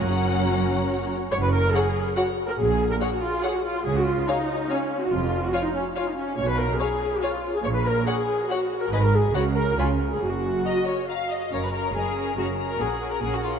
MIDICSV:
0, 0, Header, 1, 6, 480
1, 0, Start_track
1, 0, Key_signature, 6, "major"
1, 0, Tempo, 428878
1, 28, Time_signature, 3, 2, 24, 8
1, 2428, Tempo, 421941
1, 10588, Tempo, 438276
1, 12988, Tempo, 425230
1, 15311, End_track
2, 0, Start_track
2, 0, Title_t, "Violin section"
2, 0, Program_c, 0, 48
2, 25, Note_on_c, 0, 78, 70
2, 1211, Note_off_c, 0, 78, 0
2, 1955, Note_on_c, 0, 78, 47
2, 2045, Note_off_c, 0, 78, 0
2, 2429, Note_on_c, 0, 78, 42
2, 2520, Note_off_c, 0, 78, 0
2, 3393, Note_on_c, 0, 78, 44
2, 3484, Note_off_c, 0, 78, 0
2, 3867, Note_on_c, 0, 78, 42
2, 3958, Note_off_c, 0, 78, 0
2, 4830, Note_on_c, 0, 80, 46
2, 4921, Note_off_c, 0, 80, 0
2, 5308, Note_on_c, 0, 80, 42
2, 5399, Note_off_c, 0, 80, 0
2, 6262, Note_on_c, 0, 80, 42
2, 6353, Note_off_c, 0, 80, 0
2, 6741, Note_on_c, 0, 80, 42
2, 6832, Note_off_c, 0, 80, 0
2, 7698, Note_on_c, 0, 80, 42
2, 7789, Note_off_c, 0, 80, 0
2, 8173, Note_on_c, 0, 80, 41
2, 8264, Note_off_c, 0, 80, 0
2, 9137, Note_on_c, 0, 78, 46
2, 9228, Note_off_c, 0, 78, 0
2, 9622, Note_on_c, 0, 78, 41
2, 9713, Note_off_c, 0, 78, 0
2, 10116, Note_on_c, 0, 80, 49
2, 10207, Note_off_c, 0, 80, 0
2, 10595, Note_on_c, 0, 82, 41
2, 10683, Note_off_c, 0, 82, 0
2, 11068, Note_on_c, 0, 83, 33
2, 11156, Note_off_c, 0, 83, 0
2, 12024, Note_on_c, 0, 82, 33
2, 12112, Note_off_c, 0, 82, 0
2, 12507, Note_on_c, 0, 82, 33
2, 12595, Note_off_c, 0, 82, 0
2, 12985, Note_on_c, 0, 82, 35
2, 13214, Note_off_c, 0, 82, 0
2, 13227, Note_on_c, 0, 82, 28
2, 13458, Note_off_c, 0, 82, 0
2, 13472, Note_on_c, 0, 82, 27
2, 13704, Note_off_c, 0, 82, 0
2, 13716, Note_on_c, 0, 82, 29
2, 13930, Note_off_c, 0, 82, 0
2, 13943, Note_on_c, 0, 82, 32
2, 14171, Note_off_c, 0, 82, 0
2, 14185, Note_on_c, 0, 82, 28
2, 14418, Note_off_c, 0, 82, 0
2, 14425, Note_on_c, 0, 78, 35
2, 14641, Note_off_c, 0, 78, 0
2, 14655, Note_on_c, 0, 78, 32
2, 14891, Note_off_c, 0, 78, 0
2, 14905, Note_on_c, 0, 78, 30
2, 15140, Note_off_c, 0, 78, 0
2, 15152, Note_on_c, 0, 78, 35
2, 15311, Note_off_c, 0, 78, 0
2, 15311, End_track
3, 0, Start_track
3, 0, Title_t, "Violin section"
3, 0, Program_c, 1, 48
3, 21, Note_on_c, 1, 70, 38
3, 26, Note_on_c, 1, 73, 43
3, 1226, Note_off_c, 1, 73, 0
3, 1248, Note_off_c, 1, 70, 0
3, 1959, Note_on_c, 1, 73, 50
3, 1960, Note_on_c, 1, 78, 54
3, 2049, Note_off_c, 1, 73, 0
3, 2049, Note_off_c, 1, 78, 0
3, 2423, Note_on_c, 1, 78, 50
3, 2424, Note_on_c, 1, 73, 46
3, 2514, Note_off_c, 1, 78, 0
3, 2515, Note_off_c, 1, 73, 0
3, 3383, Note_on_c, 1, 73, 50
3, 3384, Note_on_c, 1, 78, 48
3, 3474, Note_off_c, 1, 73, 0
3, 3475, Note_off_c, 1, 78, 0
3, 3864, Note_on_c, 1, 73, 44
3, 3866, Note_on_c, 1, 78, 45
3, 3955, Note_off_c, 1, 73, 0
3, 3957, Note_off_c, 1, 78, 0
3, 4829, Note_on_c, 1, 73, 51
3, 4829, Note_on_c, 1, 77, 48
3, 4920, Note_off_c, 1, 73, 0
3, 4920, Note_off_c, 1, 77, 0
3, 5301, Note_on_c, 1, 73, 42
3, 5305, Note_on_c, 1, 77, 41
3, 5392, Note_off_c, 1, 73, 0
3, 5396, Note_off_c, 1, 77, 0
3, 6252, Note_on_c, 1, 73, 53
3, 6254, Note_on_c, 1, 77, 47
3, 6343, Note_off_c, 1, 73, 0
3, 6345, Note_off_c, 1, 77, 0
3, 6736, Note_on_c, 1, 77, 45
3, 6739, Note_on_c, 1, 73, 44
3, 6827, Note_off_c, 1, 77, 0
3, 6830, Note_off_c, 1, 73, 0
3, 7690, Note_on_c, 1, 73, 50
3, 7693, Note_on_c, 1, 77, 47
3, 7781, Note_off_c, 1, 73, 0
3, 7784, Note_off_c, 1, 77, 0
3, 8183, Note_on_c, 1, 73, 48
3, 8183, Note_on_c, 1, 77, 44
3, 8274, Note_off_c, 1, 73, 0
3, 8274, Note_off_c, 1, 77, 0
3, 9140, Note_on_c, 1, 73, 51
3, 9141, Note_on_c, 1, 78, 49
3, 9231, Note_off_c, 1, 73, 0
3, 9232, Note_off_c, 1, 78, 0
3, 9635, Note_on_c, 1, 73, 42
3, 9638, Note_on_c, 1, 78, 44
3, 9726, Note_off_c, 1, 73, 0
3, 9729, Note_off_c, 1, 78, 0
3, 10116, Note_on_c, 1, 71, 41
3, 10116, Note_on_c, 1, 75, 38
3, 10207, Note_off_c, 1, 71, 0
3, 10207, Note_off_c, 1, 75, 0
3, 10591, Note_on_c, 1, 73, 46
3, 10594, Note_on_c, 1, 78, 49
3, 10678, Note_off_c, 1, 73, 0
3, 10681, Note_off_c, 1, 78, 0
3, 11071, Note_on_c, 1, 73, 40
3, 11074, Note_on_c, 1, 80, 40
3, 11159, Note_off_c, 1, 73, 0
3, 11162, Note_off_c, 1, 80, 0
3, 12024, Note_on_c, 1, 75, 57
3, 12249, Note_off_c, 1, 75, 0
3, 12258, Note_on_c, 1, 73, 43
3, 12499, Note_on_c, 1, 77, 49
3, 12502, Note_off_c, 1, 73, 0
3, 12738, Note_off_c, 1, 77, 0
3, 12738, Note_on_c, 1, 75, 38
3, 12980, Note_off_c, 1, 75, 0
3, 12980, Note_on_c, 1, 73, 46
3, 13029, Note_off_c, 1, 73, 0
3, 13105, Note_on_c, 1, 71, 39
3, 13212, Note_on_c, 1, 70, 46
3, 13222, Note_off_c, 1, 71, 0
3, 13453, Note_off_c, 1, 70, 0
3, 13461, Note_on_c, 1, 68, 51
3, 13932, Note_off_c, 1, 68, 0
3, 13943, Note_on_c, 1, 66, 43
3, 14033, Note_off_c, 1, 66, 0
3, 14308, Note_on_c, 1, 70, 45
3, 14415, Note_on_c, 1, 68, 45
3, 14422, Note_off_c, 1, 70, 0
3, 14779, Note_off_c, 1, 68, 0
3, 14788, Note_on_c, 1, 70, 43
3, 14892, Note_on_c, 1, 68, 50
3, 14903, Note_off_c, 1, 70, 0
3, 15015, Note_off_c, 1, 68, 0
3, 15025, Note_on_c, 1, 66, 43
3, 15134, Note_on_c, 1, 65, 44
3, 15145, Note_off_c, 1, 66, 0
3, 15225, Note_off_c, 1, 65, 0
3, 15311, End_track
4, 0, Start_track
4, 0, Title_t, "Viola section"
4, 0, Program_c, 2, 48
4, 36, Note_on_c, 2, 66, 46
4, 37, Note_on_c, 2, 61, 48
4, 1231, Note_off_c, 2, 61, 0
4, 1256, Note_off_c, 2, 66, 0
4, 1480, Note_on_c, 2, 73, 78
4, 1527, Note_off_c, 2, 73, 0
4, 1603, Note_on_c, 2, 71, 70
4, 1715, Note_on_c, 2, 70, 78
4, 1716, Note_off_c, 2, 71, 0
4, 1948, Note_off_c, 2, 70, 0
4, 1953, Note_on_c, 2, 68, 77
4, 2422, Note_on_c, 2, 66, 65
4, 2427, Note_off_c, 2, 68, 0
4, 2513, Note_off_c, 2, 66, 0
4, 2787, Note_on_c, 2, 70, 60
4, 2835, Note_off_c, 2, 70, 0
4, 2906, Note_on_c, 2, 68, 76
4, 3261, Note_off_c, 2, 68, 0
4, 3270, Note_on_c, 2, 70, 62
4, 3318, Note_off_c, 2, 70, 0
4, 3388, Note_on_c, 2, 68, 68
4, 3507, Note_off_c, 2, 68, 0
4, 3512, Note_on_c, 2, 66, 62
4, 3625, Note_on_c, 2, 65, 72
4, 3629, Note_off_c, 2, 66, 0
4, 3863, Note_off_c, 2, 65, 0
4, 3873, Note_on_c, 2, 68, 65
4, 3991, Note_off_c, 2, 68, 0
4, 3991, Note_on_c, 2, 66, 51
4, 4104, Note_on_c, 2, 65, 69
4, 4110, Note_off_c, 2, 66, 0
4, 4341, Note_off_c, 2, 65, 0
4, 4348, Note_on_c, 2, 68, 81
4, 4466, Note_off_c, 2, 68, 0
4, 4475, Note_on_c, 2, 66, 62
4, 4581, Note_on_c, 2, 65, 61
4, 4591, Note_off_c, 2, 66, 0
4, 4823, Note_off_c, 2, 65, 0
4, 4825, Note_on_c, 2, 63, 68
4, 5302, Note_on_c, 2, 61, 61
4, 5306, Note_off_c, 2, 63, 0
4, 5662, Note_off_c, 2, 61, 0
4, 5673, Note_on_c, 2, 66, 59
4, 5787, Note_off_c, 2, 66, 0
4, 5787, Note_on_c, 2, 65, 65
4, 6140, Note_off_c, 2, 65, 0
4, 6157, Note_on_c, 2, 66, 62
4, 6259, Note_on_c, 2, 65, 65
4, 6265, Note_off_c, 2, 66, 0
4, 6376, Note_off_c, 2, 65, 0
4, 6388, Note_on_c, 2, 63, 60
4, 6500, Note_off_c, 2, 63, 0
4, 6500, Note_on_c, 2, 61, 65
4, 6591, Note_off_c, 2, 61, 0
4, 6747, Note_on_c, 2, 65, 60
4, 6857, Note_off_c, 2, 65, 0
4, 6870, Note_on_c, 2, 63, 55
4, 6969, Note_on_c, 2, 61, 66
4, 6981, Note_off_c, 2, 63, 0
4, 7206, Note_off_c, 2, 61, 0
4, 7210, Note_on_c, 2, 73, 79
4, 7329, Note_off_c, 2, 73, 0
4, 7347, Note_on_c, 2, 71, 69
4, 7458, Note_off_c, 2, 71, 0
4, 7459, Note_on_c, 2, 70, 74
4, 7696, Note_off_c, 2, 70, 0
4, 7699, Note_on_c, 2, 68, 68
4, 8168, Note_off_c, 2, 68, 0
4, 8180, Note_on_c, 2, 65, 62
4, 8538, Note_off_c, 2, 65, 0
4, 8549, Note_on_c, 2, 68, 70
4, 8594, Note_off_c, 2, 68, 0
4, 8655, Note_on_c, 2, 73, 74
4, 8703, Note_off_c, 2, 73, 0
4, 8785, Note_on_c, 2, 71, 57
4, 8895, Note_on_c, 2, 70, 72
4, 8898, Note_off_c, 2, 71, 0
4, 9137, Note_off_c, 2, 70, 0
4, 9147, Note_on_c, 2, 68, 69
4, 9617, Note_off_c, 2, 68, 0
4, 9626, Note_on_c, 2, 66, 58
4, 9985, Note_off_c, 2, 66, 0
4, 9998, Note_on_c, 2, 70, 55
4, 10111, Note_off_c, 2, 70, 0
4, 10119, Note_on_c, 2, 71, 82
4, 10229, Note_off_c, 2, 71, 0
4, 10243, Note_on_c, 2, 70, 57
4, 10351, Note_off_c, 2, 70, 0
4, 10361, Note_on_c, 2, 68, 65
4, 10592, Note_on_c, 2, 66, 67
4, 10593, Note_off_c, 2, 68, 0
4, 10680, Note_off_c, 2, 66, 0
4, 10832, Note_on_c, 2, 70, 70
4, 11059, Note_off_c, 2, 70, 0
4, 11077, Note_on_c, 2, 65, 48
4, 11165, Note_off_c, 2, 65, 0
4, 11437, Note_on_c, 2, 68, 54
4, 11548, Note_off_c, 2, 68, 0
4, 11556, Note_on_c, 2, 66, 60
4, 12514, Note_off_c, 2, 66, 0
4, 12976, Note_on_c, 2, 61, 32
4, 12977, Note_on_c, 2, 70, 32
4, 13201, Note_off_c, 2, 70, 0
4, 13202, Note_off_c, 2, 61, 0
4, 13214, Note_on_c, 2, 70, 25
4, 13215, Note_on_c, 2, 61, 28
4, 13446, Note_off_c, 2, 70, 0
4, 13450, Note_off_c, 2, 61, 0
4, 13459, Note_on_c, 2, 70, 31
4, 13464, Note_on_c, 2, 61, 30
4, 13682, Note_off_c, 2, 70, 0
4, 13684, Note_off_c, 2, 61, 0
4, 13696, Note_on_c, 2, 70, 33
4, 13697, Note_on_c, 2, 61, 32
4, 13933, Note_off_c, 2, 61, 0
4, 13934, Note_off_c, 2, 70, 0
4, 13946, Note_on_c, 2, 61, 29
4, 13948, Note_on_c, 2, 70, 26
4, 14167, Note_off_c, 2, 70, 0
4, 14172, Note_off_c, 2, 61, 0
4, 14180, Note_on_c, 2, 70, 32
4, 14186, Note_on_c, 2, 61, 30
4, 14401, Note_off_c, 2, 61, 0
4, 14403, Note_off_c, 2, 70, 0
4, 14414, Note_on_c, 2, 61, 34
4, 14416, Note_on_c, 2, 70, 34
4, 14654, Note_off_c, 2, 61, 0
4, 14655, Note_off_c, 2, 70, 0
4, 14667, Note_on_c, 2, 61, 30
4, 14670, Note_on_c, 2, 70, 29
4, 14888, Note_off_c, 2, 61, 0
4, 14890, Note_off_c, 2, 70, 0
4, 14902, Note_on_c, 2, 61, 31
4, 14904, Note_on_c, 2, 70, 36
4, 15134, Note_off_c, 2, 61, 0
4, 15139, Note_off_c, 2, 70, 0
4, 15148, Note_on_c, 2, 61, 34
4, 15151, Note_on_c, 2, 70, 32
4, 15311, Note_off_c, 2, 61, 0
4, 15311, Note_off_c, 2, 70, 0
4, 15311, End_track
5, 0, Start_track
5, 0, Title_t, "Cello section"
5, 0, Program_c, 3, 48
5, 32, Note_on_c, 3, 42, 52
5, 1254, Note_off_c, 3, 42, 0
5, 1480, Note_on_c, 3, 42, 62
5, 1875, Note_off_c, 3, 42, 0
5, 2906, Note_on_c, 3, 46, 60
5, 3308, Note_off_c, 3, 46, 0
5, 4347, Note_on_c, 3, 49, 60
5, 4746, Note_off_c, 3, 49, 0
5, 5789, Note_on_c, 3, 41, 60
5, 6180, Note_off_c, 3, 41, 0
5, 7218, Note_on_c, 3, 47, 62
5, 7616, Note_off_c, 3, 47, 0
5, 8659, Note_on_c, 3, 46, 62
5, 9058, Note_off_c, 3, 46, 0
5, 10108, Note_on_c, 3, 44, 63
5, 10507, Note_off_c, 3, 44, 0
5, 10590, Note_on_c, 3, 49, 46
5, 10980, Note_off_c, 3, 49, 0
5, 11062, Note_on_c, 3, 49, 43
5, 11463, Note_off_c, 3, 49, 0
5, 11540, Note_on_c, 3, 42, 49
5, 11945, Note_off_c, 3, 42, 0
5, 12988, Note_on_c, 3, 42, 41
5, 13388, Note_off_c, 3, 42, 0
5, 13465, Note_on_c, 3, 42, 36
5, 13866, Note_off_c, 3, 42, 0
5, 13941, Note_on_c, 3, 42, 38
5, 14342, Note_off_c, 3, 42, 0
5, 14419, Note_on_c, 3, 46, 41
5, 14823, Note_off_c, 3, 46, 0
5, 14901, Note_on_c, 3, 46, 40
5, 15304, Note_off_c, 3, 46, 0
5, 15311, End_track
6, 0, Start_track
6, 0, Title_t, "Double bass section"
6, 0, Program_c, 4, 48
6, 27, Note_on_c, 4, 30, 40
6, 1251, Note_off_c, 4, 30, 0
6, 1478, Note_on_c, 4, 30, 58
6, 1874, Note_off_c, 4, 30, 0
6, 2906, Note_on_c, 4, 34, 59
6, 3308, Note_off_c, 4, 34, 0
6, 4343, Note_on_c, 4, 37, 51
6, 4744, Note_off_c, 4, 37, 0
6, 5779, Note_on_c, 4, 29, 50
6, 6175, Note_off_c, 4, 29, 0
6, 7211, Note_on_c, 4, 35, 50
6, 7613, Note_off_c, 4, 35, 0
6, 8652, Note_on_c, 4, 34, 53
6, 9055, Note_off_c, 4, 34, 0
6, 10105, Note_on_c, 4, 32, 50
6, 10506, Note_off_c, 4, 32, 0
6, 10588, Note_on_c, 4, 37, 49
6, 10979, Note_off_c, 4, 37, 0
6, 11060, Note_on_c, 4, 37, 44
6, 11462, Note_off_c, 4, 37, 0
6, 11538, Note_on_c, 4, 30, 46
6, 11944, Note_off_c, 4, 30, 0
6, 12982, Note_on_c, 4, 30, 34
6, 13385, Note_off_c, 4, 30, 0
6, 13454, Note_on_c, 4, 30, 41
6, 13860, Note_off_c, 4, 30, 0
6, 13937, Note_on_c, 4, 30, 39
6, 14340, Note_off_c, 4, 30, 0
6, 14412, Note_on_c, 4, 34, 40
6, 14819, Note_off_c, 4, 34, 0
6, 14897, Note_on_c, 4, 34, 38
6, 15302, Note_off_c, 4, 34, 0
6, 15311, End_track
0, 0, End_of_file